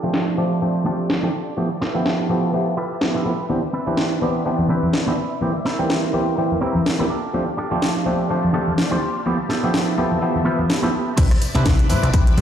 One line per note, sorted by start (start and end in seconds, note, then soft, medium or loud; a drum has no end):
0.00 0.35 F3 medium
0.00 0.35 A3 medium
0.00 0.35 C4 medium
0.00 0.35 D4 medium
0.00 1.55 G4 medium
0.00 0.36 G4 loud
0.00 1.55 D5 medium
0.00 1.55 A5 medium
0.13 muted clean electric guitar stroke medium
0.13 snare loud
0.27 muted clean electric guitar stroke soft
0.37 0.59 F3 medium
0.37 0.59 A3 medium
0.37 0.59 C4 medium
0.37 0.59 D4 medium
0.37 0.60 G4 loud
0.61 0.83 F3 medium
0.61 0.83 A3 medium
0.61 0.83 C4 medium
0.61 0.83 D4 medium
0.61 0.83 G4 medium
0.61 muted clean electric guitar stroke soft
0.85 1.20 F3 medium
0.85 1.20 A3 medium
0.85 1.20 C4 medium
0.85 1.04 D4 loud
0.85 1.20 D4 medium
0.85 1.05 F4 loud
0.85 1.20 G4 medium
0.85 1.05 G4 loud
0.85 1.05 A4 loud
1.10 snare loud
1.23 1.28 F3 medium
1.23 1.28 A3 medium
1.23 1.28 C4 medium
1.23 1.52 D4 medium
1.23 1.28 D4 medium
1.23 1.53 F4 medium
1.23 1.29 G4 loud
1.23 1.53 G4 medium
1.23 1.53 A4 medium
1.57 1.68 F3 medium
1.57 1.68 A3 medium
1.57 1.68 B3 medium
1.57 1.68 E4 medium
1.57 3.48 G4 medium
1.57 1.69 G4 medium
1.57 3.48 B4 medium
1.57 7.06 E5 medium
1.57 3.48 A5 medium
1.81 1.95 E4 loud
1.81 1.95 F4 loud
1.81 1.95 G4 loud
1.81 1.95 A4 medium
1.81 1.95 B4 loud
1.81 snare medium
1.95 2.27 F3 medium
1.95 2.27 A3 medium
1.95 2.27 B3 medium
1.95 2.27 G4 loud
1.95 2.27 E5 medium
2.05 muted clean electric guitar stroke medium
2.05 snare loud
2.19 muted clean electric guitar stroke soft
2.29 2.51 F3 medium
2.29 2.51 A3 medium
2.29 2.51 B3 medium
2.29 2.51 E4 medium
2.29 2.51 G4 loud
2.53 2.75 F3 medium
2.53 2.75 A3 medium
2.53 2.75 B3 medium
2.53 2.75 E4 medium
2.53 2.75 G4 medium
2.53 muted clean electric guitar stroke soft
2.77 2.96 E4 loud
2.77 2.96 F4 loud
2.77 2.96 G4 loud
2.77 2.96 A4 medium
2.77 2.97 B4 loud
3.01 3.23 F3 medium
3.01 3.23 A3 medium
3.01 3.23 B3 medium
3.01 3.23 E4 medium
3.01 3.23 G4 medium
3.01 snare loud
3.15 3.44 E4 medium
3.15 3.44 F4 medium
3.15 3.44 G4 medium
3.15 3.45 A4 medium
3.15 3.45 B4 medium
3.25 3.32 F3 medium
3.25 3.32 A3 medium
3.25 3.32 B3 medium
3.25 3.33 E4 medium
3.25 3.33 A4 medium
3.49 3.60 E3 medium
3.49 3.60 B3 medium
3.49 3.61 C4 medium
3.49 3.61 D4 medium
3.49 3.61 G4 medium
3.49 5.40 B4 medium
3.49 5.40 D5 medium
3.49 tambourine soft
3.49 high conga medium
3.73 3.87 C4 loud
3.73 3.87 D4 medium
3.73 3.87 E4 medium
3.73 3.87 B4 loud
3.73 tambourine medium
3.87 4.19 E3 medium
3.87 4.19 C4 medium
3.87 4.19 D4 medium
3.87 4.19 G4 loud
3.87 4.19 B4 medium
3.87 tambourine soft
3.87 high conga medium
3.97 muted clean electric guitar stroke medium
3.97 snare loud
3.97 tambourine soft
4.11 muted clean electric guitar stroke soft
4.21 4.43 E3 medium
4.21 4.43 B3 medium
4.21 4.43 C4 medium
4.21 4.43 D4 medium
4.21 4.44 G4 loud
4.21 tambourine medium
4.21 high conga medium
4.34 tambourine soft
4.45 4.67 E3 medium
4.45 4.67 B3 medium
4.45 4.67 C4 medium
4.45 4.67 D4 medium
4.45 4.67 G4 medium
4.45 muted clean electric guitar stroke soft
4.45 tambourine soft
4.58 tambourine soft
4.58 low conga medium
4.69 5.04 E3 medium
4.69 4.88 C4 loud
4.69 5.04 C4 medium
4.69 4.88 D4 loud
4.69 5.04 D4 medium
4.69 4.88 E4 medium
4.69 5.04 G4 medium
4.69 5.04 B4 medium
4.69 4.89 B4 loud
4.69 tambourine medium
4.69 high conga medium
4.83 tambourine soft
4.83 low conga medium
4.93 snare loud
5.06 5.12 E3 medium
5.06 5.13 B3 medium
5.06 5.36 C4 medium
5.06 5.13 C4 medium
5.06 5.36 D4 medium
5.06 5.13 D4 medium
5.06 5.37 E4 medium
5.06 5.13 G4 loud
5.06 5.37 B4 medium
5.06 tambourine soft
5.06 high conga medium
5.17 tambourine medium
5.31 tambourine soft
5.41 5.52 E3 medium
5.41 5.52 G3 medium
5.41 5.53 A#3 medium
5.41 5.53 C4 medium
5.41 5.53 G4 medium
5.41 7.08 A#4 medium
5.41 tambourine soft
5.41 high conga medium
5.65 5.79 C4 loud
5.65 5.79 E4 medium
5.65 5.79 A#4 loud
5.65 snare medium
5.65 tambourine medium
5.79 6.11 E3 medium
5.79 6.11 G3 medium
5.79 6.11 A#3 medium
5.79 6.11 C4 medium
5.79 6.11 G4 loud
5.79 tambourine soft
5.79 high conga medium
5.89 muted clean electric guitar stroke medium
5.89 snare loud
6.03 muted clean electric guitar stroke soft
6.13 6.35 E3 medium
6.13 6.35 G3 medium
6.13 6.35 A#3 medium
6.13 6.35 C4 medium
6.13 6.35 G4 loud
6.13 tambourine medium
6.13 high conga medium
6.28 tambourine soft
6.37 6.59 E3 medium
6.37 6.59 G3 medium
6.37 6.59 A#3 medium
6.37 6.60 C4 medium
6.37 6.60 G4 medium
6.37 muted clean electric guitar stroke soft
6.37 tambourine soft
6.52 tambourine soft
6.52 low conga medium
6.61 6.96 E3 medium
6.61 6.96 G3 medium
6.61 6.96 A#3 medium
6.61 6.80 C4 loud
6.61 6.96 C4 medium
6.61 6.80 E4 loud
6.61 6.96 G4 medium
6.61 6.81 A#4 loud
6.61 tambourine medium
6.61 high conga medium
6.75 tambourine soft
6.75 low conga medium
6.86 snare loud
6.99 7.05 E3 medium
6.99 7.05 G3 medium
6.99 7.05 A#3 medium
6.99 7.08 C4 medium
6.99 7.05 C4 medium
6.99 7.10 E4 medium
6.99 7.05 G4 loud
6.99 7.10 A#4 loud
6.99 tambourine soft
6.99 high conga medium
7.09 7.49 D4 medium
7.09 7.49 F4 medium
7.09 7.49 G4 medium
7.09 11.14 G4 medium
7.09 7.50 A4 medium
7.09 9.24 D5 medium
7.09 9.24 F5 medium
7.09 11.14 A5 medium
7.09 tambourine medium
7.24 tambourine soft
7.33 7.44 F3 medium
7.33 7.45 A3 medium
7.33 7.45 C4 medium
7.33 7.45 D4 medium
7.33 7.45 G4 medium
7.33 tambourine soft
7.33 high conga medium
7.57 7.71 D4 loud
7.57 7.71 F4 medium
7.57 7.71 G4 medium
7.57 7.72 A4 loud
7.57 tambourine medium
7.71 8.03 F3 medium
7.71 8.03 A3 medium
7.71 8.03 C4 medium
7.71 8.03 D4 medium
7.71 8.04 G4 loud
7.71 tambourine soft
7.71 high conga medium
7.81 muted clean electric guitar stroke medium
7.81 snare loud
7.81 tambourine medium
7.95 muted clean electric guitar stroke soft
8.05 8.27 F3 medium
8.05 8.27 A3 medium
8.05 8.27 C4 medium
8.05 8.28 D4 medium
8.05 8.28 G4 loud
8.05 tambourine loud
8.05 high conga medium
8.20 tambourine soft
8.29 8.51 F3 medium
8.29 8.51 A3 medium
8.29 8.52 C4 medium
8.29 8.52 D4 medium
8.29 8.52 G4 medium
8.29 muted clean electric guitar stroke soft
8.29 tambourine soft
8.44 tambourine soft
8.44 low conga medium
8.53 8.88 F3 medium
8.53 8.88 A3 medium
8.53 8.88 C4 medium
8.53 8.72 D4 loud
8.53 8.88 D4 medium
8.53 8.72 F4 loud
8.53 8.72 G4 loud
8.53 8.89 G4 medium
8.53 8.73 A4 loud
8.53 tambourine medium
8.53 high conga medium
8.68 tambourine soft
8.68 low conga medium
8.78 snare loud
8.78 tambourine soft
8.91 8.97 F3 medium
8.91 8.97 A3 medium
8.91 8.97 C4 medium
8.91 9.20 D4 medium
8.91 8.97 D4 medium
8.91 9.20 F4 medium
8.91 9.21 G4 medium
8.91 8.97 G4 loud
8.91 9.21 C5 loud
8.91 tambourine soft
8.91 high conga medium
9.02 tambourine medium
9.16 tambourine soft
9.26 9.37 F3 medium
9.26 9.37 A3 medium
9.26 9.37 B3 medium
9.26 9.37 E4 medium
9.26 9.37 G4 medium
9.26 11.16 B4 medium
9.26 11.16 E5 medium
9.26 tambourine medium
9.26 high conga medium
9.40 tambourine soft
9.49 9.63 B3 loud
9.49 9.63 E4 loud
9.49 9.63 F4 loud
9.49 9.63 G4 medium
9.49 9.63 A4 loud
9.49 snare medium
9.49 tambourine medium
9.63 9.95 F3 medium
9.63 9.95 A3 medium
9.63 9.96 B3 medium
9.63 9.96 G4 loud
9.63 9.96 E5 medium
9.63 tambourine soft
9.63 high conga medium
9.73 muted clean electric guitar stroke medium
9.73 snare loud
9.86 muted clean electric guitar stroke soft
9.86 tambourine soft
9.98 10.19 F3 medium
9.98 10.19 A3 medium
9.98 10.19 B3 medium
9.98 10.20 E4 medium
9.98 10.20 G4 loud
9.98 tambourine medium
9.98 high conga medium
10.12 tambourine soft
10.12 low conga medium
10.21 10.43 F3 medium
10.21 10.43 A3 medium
10.21 10.43 B3 medium
10.21 10.44 E4 medium
10.21 10.44 G4 medium
10.21 muted clean electric guitar stroke soft
10.21 tambourine soft
10.36 tambourine soft
10.36 low conga medium
10.45 10.80 F3 medium
10.45 10.80 A3 medium
10.45 10.64 B3 loud
10.45 10.80 B3 medium
10.45 10.64 E4 loud
10.45 10.64 F4 loud
10.45 10.65 G4 loud
10.45 10.80 G4 medium
10.45 10.65 A4 loud
10.45 10.80 E5 medium
10.45 tambourine medium
10.45 high conga medium
10.59 tambourine soft
10.59 low conga medium
10.69 snare loud
10.69 tambourine medium
10.82 10.88 F3 medium
10.82 10.88 A3 medium
10.82 11.12 B3 medium
10.82 10.89 B3 medium
10.82 11.12 E4 medium
10.82 10.89 E4 medium
10.82 11.12 F4 medium
10.82 11.12 G4 medium
10.82 10.89 G4 loud
10.82 11.13 A4 medium
10.82 tambourine soft
10.82 high conga medium
10.93 tambourine medium
11.08 tambourine soft
11.16 11.26 C2 loud
11.16 11.28 G3 medium
11.16 11.31 C4 loud
11.16 11.28 C4 medium
11.16 11.31 D4 loud
11.16 11.29 D4 medium
11.16 11.31 E4 loud
11.16 12.41 E4 medium
11.16 11.29 E4 medium
11.16 11.31 B4 loud
11.16 11.29 B4 loud
11.16 12.41 D5 medium
11.16 12.41 B5 loud
11.16 kick loud
11.16 closed hi-hat loud
11.16 crash loud
11.16 tambourine medium
11.16 high conga loud
11.31 cross-stick medium
11.31 closed hi-hat soft
11.41 muted clean electric guitar stroke soft
11.41 open hi-hat loud
11.41 tambourine loud
11.54 11.91 C2 medium
11.54 11.87 G3 loud
11.54 11.72 C4 medium
11.54 11.87 C4 medium
11.54 11.72 D4 medium
11.54 11.87 D4 medium
11.54 11.87 E4 medium
11.54 11.72 E4 medium
11.54 11.73 B4 loud
11.54 11.87 B4 loud
11.54 closed hi-hat soft
11.54 tambourine soft
11.54 high conga medium
11.65 kick loud
11.65 snare loud
11.65 closed hi-hat medium
11.65 tambourine medium
11.79 closed hi-hat soft
11.89 11.98 G2 loud
11.89 12.11 G3 loud
11.89 12.11 C4 medium
11.89 12.11 D4 medium
11.89 12.11 E4 medium
11.89 12.11 B4 loud
11.89 muted clean electric guitar stroke medium
11.89 open hi-hat loud
11.89 tambourine loud
11.89 high conga loud
12.03 12.10 C2 loud
12.03 muted clean electric guitar stroke soft
12.03 cross-stick medium
12.03 closed hi-hat soft
12.03 tambourine soft
12.13 12.35 G3 medium
12.13 12.35 C4 medium
12.13 12.35 D4 medium
12.13 12.35 E4 medium
12.13 12.35 B4 loud
12.13 kick loud
12.13 closed hi-hat loud
12.13 tambourine medium
12.27 closed hi-hat soft
12.27 tambourine soft
12.27 low conga medium
12.37 12.41 G2 loud
12.37 12.41 G3 medium
12.37 12.41 C4 medium
12.37 12.41 D4 medium
12.37 12.41 E4 medium
12.37 12.41 B4 medium
12.37 open hi-hat loud
12.37 tambourine medium
12.37 high conga medium